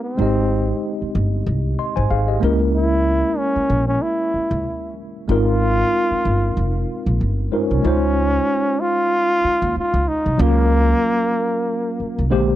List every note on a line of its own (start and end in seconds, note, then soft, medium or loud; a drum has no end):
0.00 0.13 G#3 medium
0.00 0.14 C4 medium
0.00 0.14 D#4 medium
0.00 0.15 G4 medium
0.00 0.15 C5 medium
0.04 0.96 C4 medium
0.17 0.71 G#1 medium
0.17 2.37 G#3 medium
0.17 2.38 C4 medium
0.17 2.38 D#4 medium
0.17 1.76 G4 medium
0.22 1.76 D#5 medium
1.02 muted upright bass stroke soft
1.15 1.41 G1 medium
1.46 1.72 C2 medium
1.79 1.95 D#5 soft
1.79 1.95 C6 medium
1.96 2.08 G#1 medium
1.96 2.09 C5 medium
1.96 2.09 G#5 medium
2.10 2.36 G#1 medium
2.10 2.27 G#4 soft
2.10 2.27 F5 medium
2.28 2.58 G4 soft
2.28 2.58 D#5 medium
2.40 3.21 C#2 medium
2.40 4.92 G#3 medium
2.40 4.92 A#3 medium
2.40 4.93 C#4 medium
2.40 4.94 E4 medium
2.44 4.94 A#4 medium
2.75 3.39 E4 loud
3.38 3.87 C#4 loud
3.56 muted upright bass stroke soft
3.70 3.96 A#1 medium
3.87 4.04 C#4 medium
4.02 4.97 E4 medium
4.34 muted upright bass stroke soft
4.51 4.62 C#2 medium
5.28 5.81 G#1 medium
5.28 7.48 G#3 medium
5.28 7.48 C4 medium
5.28 7.49 D#4 medium
5.28 7.17 F4 loud
5.28 7.49 F4 medium
5.28 7.49 A#4 medium
6.11 muted upright bass stroke soft
6.25 6.51 G1 medium
6.57 6.83 F1 medium
7.06 7.18 A#1 medium
7.21 7.47 G1 medium
7.52 7.81 G#3 soft
7.52 8.83 C#4 loud
7.52 7.84 D#4 soft
7.52 7.85 F4 soft
7.52 7.85 A#4 medium
7.52 7.84 C5 soft
7.71 7.82 C2 medium
7.82 8.37 C#2 medium
7.82 10.34 G#3 medium
7.82 10.35 C#4 medium
7.82 10.36 D#4 medium
7.82 10.36 F4 medium
7.87 10.37 C5 medium
8.81 9.76 F4 loud
9.44 muted upright bass stroke soft
9.62 9.73 D#2 medium
9.76 10.10 F4 medium
9.76 muted upright bass stroke soft
9.94 10.05 C#2 medium
10.08 10.43 D#4 medium
10.26 10.37 C2 medium
10.38 10.92 C#2 loud
10.38 12.26 F#3 medium
10.38 12.27 A#3 medium
10.38 12.37 A#3 loud
10.38 12.27 C#4 medium
10.38 12.28 F4 medium
10.42 12.28 A#4 medium
12.00 muted upright bass stroke soft
12.19 12.32 C2 medium
12.30 12.56 A#1 medium
12.30 12.56 D3 medium
12.30 12.56 G#3 medium
12.30 12.56 A#3 medium
12.30 12.56 G4 medium
12.30 12.56 C5 medium